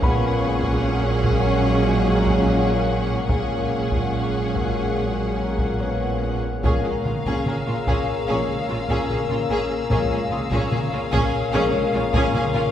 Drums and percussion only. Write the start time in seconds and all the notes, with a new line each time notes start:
0.02 taiko
0.63 taiko
1.24 taiko
2.25 taiko
3.29 taiko
3.91 taiko
4.54 taiko
5.59 taiko
6.64 taiko
7.05 taiko mid
7.26 taiko
7.46 taiko mid
7.87 taiko
8.48 taiko mid
8.89 taiko
9.09 taiko mid
9.29 taiko mid
9.90 taiko
10.31 taiko mid
10.51 taiko
10.72 taiko mid
11.13 taiko
11.74 taiko mid
12.14 taiko
12.34 taiko mid
12.55 taiko mid